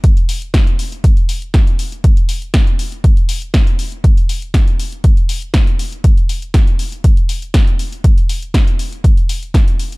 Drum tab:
HH |xxoxxxoxxxoxxxox|xxoxxxoxxxoxxxox|xxoxxxoxxxoxxxox|xxoxxxoxxxoxxxox|
SD |----o-------o---|----o-------o---|----o-------o---|----o-------o---|
BD |o---o---o---o---|o---o---o---o---|o---o---o---o---|o---o---o---o---|

HH |xxoxxxoxxxoxxxox|
SD |----o-------o---|
BD |o---o---o---o---|